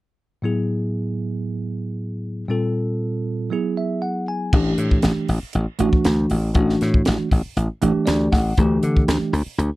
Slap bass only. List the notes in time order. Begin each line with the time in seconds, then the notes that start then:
4.53 A1
4.78 A2
5.04 A1
5.29 A1
5.43 muted slap bass stroke
5.55 A1
5.80 A1
6.06 D2
6.30 A1
6.55 A1
6.82 A2
7.08 A1
7.21 muted slap bass stroke
7.32 A1
7.46 muted slap bass stroke
7.57 A1
7.82 A1
8.08 D2
8.32 A1
8.58 D2
8.83 D3
9.08 D2
9.33 D2
9.46 muted slap bass stroke
9.58 D2